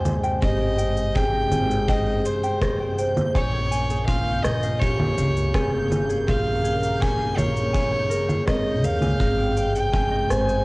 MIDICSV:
0, 0, Header, 1, 8, 480
1, 0, Start_track
1, 0, Tempo, 731707
1, 276, Time_signature, 4, 2, 24, 8
1, 6984, End_track
2, 0, Start_track
2, 0, Title_t, "Synth texture"
2, 0, Program_c, 0, 99
2, 0, Note_on_c, 0, 91, 78
2, 6984, Note_off_c, 0, 91, 0
2, 6984, End_track
3, 0, Start_track
3, 0, Title_t, "Ukulele"
3, 0, Program_c, 1, 24
3, 35, Note_on_c, 1, 68, 104
3, 104, Note_off_c, 1, 68, 0
3, 152, Note_on_c, 1, 79, 94
3, 262, Note_off_c, 1, 79, 0
3, 275, Note_on_c, 1, 75, 99
3, 383, Note_off_c, 1, 75, 0
3, 395, Note_on_c, 1, 79, 75
3, 503, Note_off_c, 1, 79, 0
3, 511, Note_on_c, 1, 79, 100
3, 627, Note_off_c, 1, 79, 0
3, 753, Note_on_c, 1, 80, 108
3, 862, Note_off_c, 1, 80, 0
3, 876, Note_on_c, 1, 75, 74
3, 984, Note_off_c, 1, 75, 0
3, 996, Note_on_c, 1, 80, 73
3, 1104, Note_off_c, 1, 80, 0
3, 1117, Note_on_c, 1, 68, 102
3, 1230, Note_off_c, 1, 68, 0
3, 1238, Note_on_c, 1, 79, 99
3, 1465, Note_off_c, 1, 79, 0
3, 1479, Note_on_c, 1, 68, 98
3, 1546, Note_off_c, 1, 68, 0
3, 1595, Note_on_c, 1, 79, 98
3, 1704, Note_off_c, 1, 79, 0
3, 1716, Note_on_c, 1, 75, 106
3, 1824, Note_off_c, 1, 75, 0
3, 1838, Note_on_c, 1, 79, 80
3, 1945, Note_off_c, 1, 79, 0
3, 1958, Note_on_c, 1, 79, 91
3, 2071, Note_off_c, 1, 79, 0
3, 2196, Note_on_c, 1, 80, 99
3, 2304, Note_off_c, 1, 80, 0
3, 2318, Note_on_c, 1, 73, 79
3, 2425, Note_off_c, 1, 73, 0
3, 2436, Note_on_c, 1, 80, 78
3, 2544, Note_off_c, 1, 80, 0
3, 2558, Note_on_c, 1, 68, 104
3, 2671, Note_off_c, 1, 68, 0
3, 2677, Note_on_c, 1, 65, 112
3, 2904, Note_off_c, 1, 65, 0
3, 2918, Note_on_c, 1, 68, 105
3, 2985, Note_off_c, 1, 68, 0
3, 3038, Note_on_c, 1, 77, 92
3, 3145, Note_off_c, 1, 77, 0
3, 3156, Note_on_c, 1, 73, 103
3, 3264, Note_off_c, 1, 73, 0
3, 3281, Note_on_c, 1, 77, 76
3, 3386, Note_off_c, 1, 77, 0
3, 3398, Note_on_c, 1, 77, 99
3, 3511, Note_off_c, 1, 77, 0
3, 3637, Note_on_c, 1, 80, 108
3, 3745, Note_off_c, 1, 80, 0
3, 3757, Note_on_c, 1, 73, 81
3, 3864, Note_off_c, 1, 73, 0
3, 3877, Note_on_c, 1, 80, 74
3, 3984, Note_off_c, 1, 80, 0
3, 3995, Note_on_c, 1, 68, 96
3, 4109, Note_off_c, 1, 68, 0
3, 4114, Note_on_c, 1, 65, 100
3, 4343, Note_off_c, 1, 65, 0
3, 4355, Note_on_c, 1, 68, 100
3, 4424, Note_off_c, 1, 68, 0
3, 4475, Note_on_c, 1, 77, 98
3, 4583, Note_off_c, 1, 77, 0
3, 4592, Note_on_c, 1, 73, 107
3, 4702, Note_off_c, 1, 73, 0
3, 4712, Note_on_c, 1, 77, 74
3, 4822, Note_off_c, 1, 77, 0
3, 4835, Note_on_c, 1, 77, 99
3, 4949, Note_off_c, 1, 77, 0
3, 5073, Note_on_c, 1, 80, 99
3, 5182, Note_off_c, 1, 80, 0
3, 5193, Note_on_c, 1, 73, 72
3, 5303, Note_off_c, 1, 73, 0
3, 5311, Note_on_c, 1, 70, 101
3, 5422, Note_off_c, 1, 70, 0
3, 5434, Note_on_c, 1, 77, 73
3, 5543, Note_off_c, 1, 77, 0
3, 5553, Note_on_c, 1, 70, 96
3, 5663, Note_off_c, 1, 70, 0
3, 5797, Note_on_c, 1, 70, 78
3, 5904, Note_off_c, 1, 70, 0
3, 5915, Note_on_c, 1, 80, 74
3, 6029, Note_off_c, 1, 80, 0
3, 6034, Note_on_c, 1, 75, 97
3, 6143, Note_off_c, 1, 75, 0
3, 6154, Note_on_c, 1, 79, 80
3, 6263, Note_off_c, 1, 79, 0
3, 6276, Note_on_c, 1, 79, 110
3, 6390, Note_off_c, 1, 79, 0
3, 6511, Note_on_c, 1, 80, 106
3, 6621, Note_off_c, 1, 80, 0
3, 6632, Note_on_c, 1, 75, 77
3, 6742, Note_off_c, 1, 75, 0
3, 6750, Note_on_c, 1, 80, 77
3, 6861, Note_off_c, 1, 80, 0
3, 6870, Note_on_c, 1, 68, 102
3, 6984, Note_off_c, 1, 68, 0
3, 6984, End_track
4, 0, Start_track
4, 0, Title_t, "Violin"
4, 0, Program_c, 2, 40
4, 269, Note_on_c, 2, 75, 109
4, 755, Note_on_c, 2, 79, 117
4, 764, Note_off_c, 2, 75, 0
4, 1235, Note_on_c, 2, 75, 105
4, 1244, Note_off_c, 2, 79, 0
4, 1477, Note_on_c, 2, 72, 90
4, 1487, Note_off_c, 2, 75, 0
4, 1956, Note_off_c, 2, 72, 0
4, 2196, Note_on_c, 2, 73, 108
4, 2650, Note_off_c, 2, 73, 0
4, 2667, Note_on_c, 2, 77, 108
4, 2907, Note_on_c, 2, 75, 110
4, 2917, Note_off_c, 2, 77, 0
4, 3145, Note_on_c, 2, 73, 102
4, 3155, Note_off_c, 2, 75, 0
4, 3871, Note_off_c, 2, 73, 0
4, 4115, Note_on_c, 2, 77, 108
4, 4600, Note_on_c, 2, 80, 118
4, 4610, Note_off_c, 2, 77, 0
4, 4835, Note_on_c, 2, 73, 107
4, 4845, Note_off_c, 2, 80, 0
4, 5553, Note_off_c, 2, 73, 0
4, 5557, Note_on_c, 2, 75, 95
4, 5800, Note_on_c, 2, 77, 113
4, 5810, Note_off_c, 2, 75, 0
4, 6396, Note_off_c, 2, 77, 0
4, 6400, Note_on_c, 2, 79, 99
4, 6762, Note_on_c, 2, 80, 102
4, 6772, Note_off_c, 2, 79, 0
4, 6984, Note_off_c, 2, 80, 0
4, 6984, End_track
5, 0, Start_track
5, 0, Title_t, "Vibraphone"
5, 0, Program_c, 3, 11
5, 0, Control_c, 3, 64, 127
5, 0, Note_on_c, 3, 72, 105
5, 0, Note_on_c, 3, 80, 98
5, 280, Note_on_c, 3, 67, 80
5, 506, Note_off_c, 3, 67, 0
5, 756, Note_on_c, 3, 68, 101
5, 984, Note_off_c, 3, 68, 0
5, 1235, Note_on_c, 3, 68, 85
5, 1463, Note_off_c, 3, 68, 0
5, 1958, Note_off_c, 3, 72, 0
5, 1958, Note_on_c, 3, 72, 101
5, 2185, Note_off_c, 3, 72, 0
5, 2204, Control_c, 3, 64, 0
5, 2205, Note_off_c, 3, 80, 0
5, 2305, Control_c, 3, 64, 127
5, 2435, Note_on_c, 3, 80, 101
5, 2572, Note_off_c, 3, 80, 0
5, 3155, Note_on_c, 3, 67, 81
5, 3383, Note_off_c, 3, 67, 0
5, 3634, Note_on_c, 3, 68, 100
5, 3863, Note_off_c, 3, 68, 0
5, 4117, Note_on_c, 3, 68, 77
5, 4344, Note_off_c, 3, 68, 0
5, 4838, Note_on_c, 3, 73, 100
5, 5065, Note_off_c, 3, 73, 0
5, 5316, Note_on_c, 3, 68, 74
5, 5544, Note_off_c, 3, 68, 0
5, 5560, Note_on_c, 3, 68, 67
5, 5786, Note_off_c, 3, 68, 0
5, 6043, Note_on_c, 3, 68, 83
5, 6044, Control_c, 3, 64, 0
5, 6149, Control_c, 3, 64, 127
5, 6267, Note_off_c, 3, 68, 0
5, 6757, Note_on_c, 3, 72, 103
5, 6984, Note_off_c, 3, 72, 0
5, 6984, End_track
6, 0, Start_track
6, 0, Title_t, "Analog synth pad"
6, 0, Program_c, 4, 89
6, 0, Note_on_c, 4, 48, 82
6, 0, Note_on_c, 4, 56, 79
6, 2166, Note_off_c, 4, 56, 0
6, 2167, Note_off_c, 4, 48, 0
6, 2192, Note_on_c, 4, 49, 89
6, 2196, Note_on_c, 4, 58, 80
6, 4115, Note_on_c, 4, 70, 96
6, 6008, Note_off_c, 4, 49, 0
6, 6010, Note_off_c, 4, 58, 0
6, 6016, Note_off_c, 4, 70, 0
6, 6035, Note_on_c, 4, 56, 80
6, 6038, Note_on_c, 4, 48, 80
6, 6984, Note_off_c, 4, 48, 0
6, 6984, Note_off_c, 4, 56, 0
6, 6984, End_track
7, 0, Start_track
7, 0, Title_t, "Upright bass"
7, 0, Program_c, 5, 32
7, 0, Note_on_c, 5, 39, 83
7, 246, Note_off_c, 5, 39, 0
7, 277, Note_on_c, 5, 32, 88
7, 967, Note_off_c, 5, 32, 0
7, 993, Note_on_c, 5, 32, 95
7, 1445, Note_off_c, 5, 32, 0
7, 2198, Note_on_c, 5, 34, 94
7, 2888, Note_off_c, 5, 34, 0
7, 2918, Note_on_c, 5, 34, 96
7, 3368, Note_off_c, 5, 34, 0
7, 3397, Note_on_c, 5, 37, 97
7, 3600, Note_off_c, 5, 37, 0
7, 3637, Note_on_c, 5, 29, 84
7, 4088, Note_off_c, 5, 29, 0
7, 4122, Note_on_c, 5, 34, 89
7, 4810, Note_off_c, 5, 34, 0
7, 4837, Note_on_c, 5, 34, 91
7, 5288, Note_off_c, 5, 34, 0
7, 5561, Note_on_c, 5, 32, 82
7, 5797, Note_off_c, 5, 32, 0
7, 5797, Note_on_c, 5, 39, 93
7, 5918, Note_off_c, 5, 39, 0
7, 5918, Note_on_c, 5, 37, 95
7, 6019, Note_off_c, 5, 37, 0
7, 6035, Note_on_c, 5, 32, 92
7, 6726, Note_off_c, 5, 32, 0
7, 6758, Note_on_c, 5, 32, 95
7, 6984, Note_off_c, 5, 32, 0
7, 6984, End_track
8, 0, Start_track
8, 0, Title_t, "Drums"
8, 34, Note_on_c, 9, 64, 68
8, 35, Note_on_c, 9, 69, 68
8, 99, Note_off_c, 9, 64, 0
8, 101, Note_off_c, 9, 69, 0
8, 155, Note_on_c, 9, 69, 43
8, 221, Note_off_c, 9, 69, 0
8, 275, Note_on_c, 9, 69, 35
8, 278, Note_on_c, 9, 36, 105
8, 340, Note_off_c, 9, 69, 0
8, 344, Note_off_c, 9, 36, 0
8, 516, Note_on_c, 9, 69, 77
8, 581, Note_off_c, 9, 69, 0
8, 636, Note_on_c, 9, 69, 48
8, 702, Note_off_c, 9, 69, 0
8, 756, Note_on_c, 9, 69, 33
8, 759, Note_on_c, 9, 36, 100
8, 822, Note_off_c, 9, 69, 0
8, 825, Note_off_c, 9, 36, 0
8, 994, Note_on_c, 9, 64, 61
8, 996, Note_on_c, 9, 69, 81
8, 1060, Note_off_c, 9, 64, 0
8, 1061, Note_off_c, 9, 69, 0
8, 1121, Note_on_c, 9, 69, 40
8, 1187, Note_off_c, 9, 69, 0
8, 1236, Note_on_c, 9, 36, 119
8, 1240, Note_on_c, 9, 69, 37
8, 1302, Note_off_c, 9, 36, 0
8, 1305, Note_off_c, 9, 69, 0
8, 1478, Note_on_c, 9, 69, 81
8, 1544, Note_off_c, 9, 69, 0
8, 1598, Note_on_c, 9, 69, 48
8, 1664, Note_off_c, 9, 69, 0
8, 1717, Note_on_c, 9, 36, 104
8, 1719, Note_on_c, 9, 37, 73
8, 1720, Note_on_c, 9, 69, 32
8, 1782, Note_off_c, 9, 36, 0
8, 1784, Note_off_c, 9, 37, 0
8, 1786, Note_off_c, 9, 69, 0
8, 1959, Note_on_c, 9, 69, 70
8, 2025, Note_off_c, 9, 69, 0
8, 2079, Note_on_c, 9, 64, 80
8, 2081, Note_on_c, 9, 69, 43
8, 2145, Note_off_c, 9, 64, 0
8, 2146, Note_off_c, 9, 69, 0
8, 2199, Note_on_c, 9, 36, 94
8, 2202, Note_on_c, 9, 69, 35
8, 2264, Note_off_c, 9, 36, 0
8, 2267, Note_off_c, 9, 69, 0
8, 2441, Note_on_c, 9, 69, 76
8, 2506, Note_off_c, 9, 69, 0
8, 2560, Note_on_c, 9, 69, 51
8, 2626, Note_off_c, 9, 69, 0
8, 2676, Note_on_c, 9, 36, 112
8, 2678, Note_on_c, 9, 69, 35
8, 2741, Note_off_c, 9, 36, 0
8, 2744, Note_off_c, 9, 69, 0
8, 2915, Note_on_c, 9, 37, 76
8, 2917, Note_on_c, 9, 69, 78
8, 2981, Note_off_c, 9, 37, 0
8, 2982, Note_off_c, 9, 69, 0
8, 3037, Note_on_c, 9, 69, 42
8, 3102, Note_off_c, 9, 69, 0
8, 3159, Note_on_c, 9, 36, 127
8, 3159, Note_on_c, 9, 69, 37
8, 3224, Note_off_c, 9, 69, 0
8, 3225, Note_off_c, 9, 36, 0
8, 3278, Note_on_c, 9, 64, 73
8, 3344, Note_off_c, 9, 64, 0
8, 3397, Note_on_c, 9, 69, 85
8, 3463, Note_off_c, 9, 69, 0
8, 3521, Note_on_c, 9, 69, 47
8, 3587, Note_off_c, 9, 69, 0
8, 3636, Note_on_c, 9, 36, 99
8, 3640, Note_on_c, 9, 37, 68
8, 3641, Note_on_c, 9, 69, 33
8, 3702, Note_off_c, 9, 36, 0
8, 3705, Note_off_c, 9, 37, 0
8, 3707, Note_off_c, 9, 69, 0
8, 3881, Note_on_c, 9, 64, 71
8, 3883, Note_on_c, 9, 69, 77
8, 3947, Note_off_c, 9, 64, 0
8, 3948, Note_off_c, 9, 69, 0
8, 4001, Note_on_c, 9, 69, 47
8, 4067, Note_off_c, 9, 69, 0
8, 4121, Note_on_c, 9, 36, 104
8, 4123, Note_on_c, 9, 69, 35
8, 4187, Note_off_c, 9, 36, 0
8, 4188, Note_off_c, 9, 69, 0
8, 4362, Note_on_c, 9, 69, 84
8, 4428, Note_off_c, 9, 69, 0
8, 4482, Note_on_c, 9, 69, 51
8, 4547, Note_off_c, 9, 69, 0
8, 4605, Note_on_c, 9, 69, 33
8, 4606, Note_on_c, 9, 36, 106
8, 4671, Note_off_c, 9, 69, 0
8, 4672, Note_off_c, 9, 36, 0
8, 4843, Note_on_c, 9, 64, 58
8, 4845, Note_on_c, 9, 69, 76
8, 4909, Note_off_c, 9, 64, 0
8, 4910, Note_off_c, 9, 69, 0
8, 4963, Note_on_c, 9, 69, 44
8, 5029, Note_off_c, 9, 69, 0
8, 5081, Note_on_c, 9, 36, 109
8, 5086, Note_on_c, 9, 69, 36
8, 5146, Note_off_c, 9, 36, 0
8, 5152, Note_off_c, 9, 69, 0
8, 5321, Note_on_c, 9, 69, 78
8, 5387, Note_off_c, 9, 69, 0
8, 5440, Note_on_c, 9, 64, 61
8, 5441, Note_on_c, 9, 69, 42
8, 5505, Note_off_c, 9, 64, 0
8, 5507, Note_off_c, 9, 69, 0
8, 5560, Note_on_c, 9, 36, 97
8, 5560, Note_on_c, 9, 37, 72
8, 5561, Note_on_c, 9, 69, 30
8, 5626, Note_off_c, 9, 36, 0
8, 5626, Note_off_c, 9, 37, 0
8, 5627, Note_off_c, 9, 69, 0
8, 5799, Note_on_c, 9, 69, 73
8, 5864, Note_off_c, 9, 69, 0
8, 5916, Note_on_c, 9, 64, 73
8, 5917, Note_on_c, 9, 69, 45
8, 5982, Note_off_c, 9, 64, 0
8, 5983, Note_off_c, 9, 69, 0
8, 6036, Note_on_c, 9, 36, 103
8, 6037, Note_on_c, 9, 69, 34
8, 6101, Note_off_c, 9, 36, 0
8, 6103, Note_off_c, 9, 69, 0
8, 6278, Note_on_c, 9, 69, 72
8, 6343, Note_off_c, 9, 69, 0
8, 6400, Note_on_c, 9, 69, 49
8, 6466, Note_off_c, 9, 69, 0
8, 6518, Note_on_c, 9, 36, 97
8, 6518, Note_on_c, 9, 69, 30
8, 6583, Note_off_c, 9, 36, 0
8, 6583, Note_off_c, 9, 69, 0
8, 6759, Note_on_c, 9, 37, 70
8, 6761, Note_on_c, 9, 69, 76
8, 6825, Note_off_c, 9, 37, 0
8, 6826, Note_off_c, 9, 69, 0
8, 6881, Note_on_c, 9, 69, 40
8, 6947, Note_off_c, 9, 69, 0
8, 6984, End_track
0, 0, End_of_file